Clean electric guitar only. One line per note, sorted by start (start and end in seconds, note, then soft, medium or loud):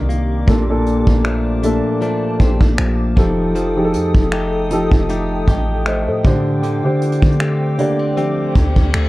0.00 0.47 C3 medium
0.00 0.56 D#3 medium
0.00 1.25 D4 medium
0.09 1.25 A#3 medium
0.47 3.25 A#2 medium
1.24 2.01 F3 medium
1.24 1.63 A3 medium
1.24 2.01 D4 medium
1.63 2.02 A3 medium
2.01 2.78 F3 medium
2.01 4.32 A3 medium
2.01 2.39 D4 medium
2.40 2.61 C4 medium
2.61 3.25 D4 medium
2.78 3.16 F3 medium
3.17 3.54 F3 medium
3.55 6.33 F3 medium
4.32 5.09 A3 medium
4.32 4.69 D#4 medium
4.32 5.10 G4 medium
4.71 5.09 D#4 medium
5.09 5.86 A3 medium
5.09 6.33 D#4 medium
5.09 5.47 G4 medium
5.48 7.41 G4 medium
5.86 7.40 A3 medium
6.25 6.63 D3 medium
6.63 9.09 D3 medium
7.40 8.16 A3 medium
7.40 7.78 C4 medium
7.40 8.18 G4 medium
7.79 7.99 A#3 medium
7.99 8.16 C4 soft
8.17 8.93 A3 medium
8.17 9.09 C4 medium
8.17 8.55 G4 medium
8.56 9.09 G4 medium
8.94 9.09 A3 medium